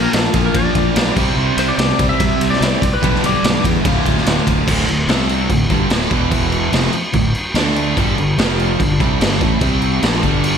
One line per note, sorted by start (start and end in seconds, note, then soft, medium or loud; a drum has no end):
0.00 0.94 A#2 medium
0.00 0.95 F3 medium
0.00 0.95 A#3 medium
0.00 1.15 A#3 medium
0.00 0.95 D4 medium
0.00 0.96 F4 medium
0.00 0.96 A#4 medium
0.00 0.13 A#4 medium
0.00 1.13 F5 medium
0.00 1.13 D6 medium
0.13 0.27 A#1 medium
0.13 0.45 A4 medium
0.13 snare loud
0.13 ride loud
0.34 0.48 A#1 medium
0.34 1.16 A#2 medium
0.34 1.16 F3 medium
0.34 1.15 A#3 medium
0.34 kick medium
0.34 ride medium
0.46 0.56 A#4 medium
0.54 0.68 A#1 medium
0.54 1.13 D5 medium
0.54 kick loud
0.54 ride loud
0.75 0.89 A#1 medium
0.75 kick medium
0.75 ride medium
0.95 1.09 B1 medium
0.95 1.15 A#2 medium
0.95 1.16 F3 medium
0.95 1.16 A#3 medium
0.95 1.16 D4 medium
0.95 1.17 F4 medium
0.95 1.17 A#4 medium
0.95 snare loud
0.95 ride loud
1.16 1.30 C2 medium
1.16 2.59 C3 loud
1.16 2.60 G3 medium
1.16 2.60 C4 medium
1.16 2.61 E4 medium
1.16 2.61 G4 medium
1.16 3.00 C5 medium
1.16 2.61 C5 loud
1.16 3.00 G5 medium
1.16 3.00 E6 medium
1.16 kick loud
1.16 crash loud
1.37 1.50 C2 loud
1.57 1.71 C2 loud
1.57 1.69 C5 medium
1.57 ride medium
1.68 1.76 D5 medium
1.78 1.91 C2 loud
1.78 2.09 D5 loud
1.78 snare loud
1.78 ride medium
1.98 2.12 C2 medium
1.98 2.81 C3 medium
1.98 2.81 G3 medium
1.98 2.80 C4 medium
1.98 kick loud
1.98 ride medium
2.09 2.48 E5 loud
2.20 2.33 C2 medium
2.20 kick loud
2.20 ride loud
2.40 2.53 C2 medium
2.40 ride medium
2.50 2.93 D5 medium
2.50 snare soft
2.60 2.74 C2 loud
2.60 2.80 C3 medium
2.60 2.81 G3 medium
2.60 2.81 C4 medium
2.60 2.81 E4 medium
2.60 2.81 G4 medium
2.60 2.82 C5 medium
2.60 snare loud
2.60 ride loud
2.82 2.95 C2 medium
2.82 kick medium
2.82 ride medium
2.94 3.25 B4 medium
3.01 3.16 B1 loud
3.01 3.83 G2 loud
3.01 3.83 D3 loud
3.01 3.84 G3 loud
3.01 3.84 B3 loud
3.01 3.84 D4 loud
3.01 3.85 G4 loud
3.01 3.84 B4 medium
3.01 3.84 G5 medium
3.01 4.66 D6 medium
3.01 kick loud
3.01 ride loud
3.15 snare soft
3.23 3.36 B1 medium
3.23 3.63 D5 medium
3.23 ride medium
3.43 3.57 B1 loud
3.43 snare loud
3.43 ride loud
3.64 3.77 E2 medium
3.64 kick medium
3.64 ride medium
3.84 3.98 D1 medium
3.84 4.66 D2 medium
3.84 4.66 A2 medium
3.84 4.67 D3 loud
3.84 4.67 A3 loud
3.84 4.68 F4 loud
3.84 4.66 A4 medium
3.84 4.66 F5 medium
3.84 kick loud
3.84 ride loud
4.06 4.19 D1 medium
4.06 kick medium
4.06 ride medium
4.17 snare soft
4.26 4.39 D1 medium
4.26 snare loud
4.26 ride loud
4.47 4.60 D1 medium
4.47 kick medium
4.47 ride medium
4.68 4.87 D1 medium
4.68 4.87 D2 loud
4.68 4.87 A2 loud
4.68 4.88 D3 loud
4.68 kick loud
4.68 crash loud
4.68 crash medium
4.88 5.07 D1 medium
4.88 5.04 D2 medium
4.88 5.04 A2 medium
4.88 crash medium
5.08 5.46 C2 loud
5.08 5.49 C3 medium
5.08 5.49 G3 medium
5.08 5.49 C4 loud
5.08 snare loud
5.08 crash medium
5.29 crash medium
5.50 5.69 D1 medium
5.50 5.66 D2 medium
5.50 5.67 A2 medium
5.50 kick medium
5.50 crash medium
5.70 5.89 G1 medium
5.70 5.90 G2 medium
5.70 5.91 D3 medium
5.70 5.91 G3 loud
5.70 kick loud
5.70 crash medium
5.90 6.10 D1 loud
5.90 6.11 D2 medium
5.90 6.11 A2 loud
5.90 6.12 D3 loud
5.90 snare loud
5.90 crash medium
6.11 6.69 E1 medium
6.11 6.72 E2 medium
6.11 6.73 B2 medium
6.11 6.73 E3 medium
6.11 kick loud
6.11 crash medium
6.31 kick loud
6.31 crash medium
6.52 crash medium
6.73 6.92 F1 medium
6.73 6.93 F2 medium
6.73 6.93 C3 medium
6.73 6.94 F3 medium
6.73 snare loud
6.73 crash medium
6.93 muted distorted electric guitar stroke medium
6.93 muted fingered electric bass stroke soft
6.93 muted overdriven electric guitar stroke medium
6.93 crash medium
7.13 7.33 D1 medium
7.13 7.31 D2 medium
7.13 7.31 A2 medium
7.13 kick medium
7.13 crash medium
7.35 crash medium
7.54 7.93 D2 loud
7.54 7.96 D3 medium
7.54 7.97 A3 loud
7.54 7.97 D4 loud
7.54 snare loud
7.54 crash medium
7.76 crash medium
7.97 8.16 G1 loud
7.97 8.16 G2 loud
7.97 8.17 D3 loud
7.97 8.38 G3 medium
7.97 8.17 G3 loud
7.97 8.38 D4 medium
7.97 8.38 A4 medium
7.97 kick loud
7.97 crash medium
8.18 8.37 G1 medium
8.18 8.34 G2 medium
8.18 8.34 D3 medium
8.18 crash medium
8.38 8.76 F1 loud
8.38 8.79 F2 medium
8.38 8.79 C3 medium
8.38 8.79 F3 medium
8.38 8.79 F3 loud
8.38 8.79 C4 medium
8.38 8.79 G4 medium
8.38 snare loud
8.38 crash medium
8.60 crash medium
8.79 8.99 G1 medium
8.79 8.96 G2 medium
8.79 8.96 D3 medium
8.79 9.61 G3 medium
8.79 9.61 D4 medium
8.79 9.61 A4 medium
8.79 kick medium
8.79 crash medium
9.00 9.19 C2 medium
9.00 9.19 C3 medium
9.00 9.20 G3 medium
9.00 9.20 C4 loud
9.00 kick loud
9.00 crash medium
9.20 9.39 G1 loud
9.20 9.40 G2 loud
9.20 9.40 D3 loud
9.20 9.40 G3 loud
9.20 snare loud
9.20 crash medium
9.40 9.60 A1 medium
9.40 9.60 A2 medium
9.40 9.61 E3 medium
9.40 9.61 A3 loud
9.40 kick loud
9.40 crash medium
9.61 9.99 C2 loud
9.61 10.01 C3 loud
9.61 10.02 G3 loud
9.61 10.02 C4 loud
9.61 10.03 C4 medium
9.61 10.02 G4 medium
9.61 10.03 D5 medium
9.61 kick loud
9.61 crash medium
9.82 crash medium
10.02 10.22 A#1 loud
10.02 10.22 A#2 medium
10.02 10.23 F3 medium
10.02 10.58 G3 medium
10.02 10.23 A#3 medium
10.02 10.58 D4 medium
10.02 10.58 A4 medium
10.02 snare loud
10.02 crash medium
10.22 10.58 G1 medium
10.22 10.58 G2 medium
10.22 10.58 D3 medium
10.22 10.58 G3 loud
10.22 kick loud
10.22 crash medium
10.44 crash medium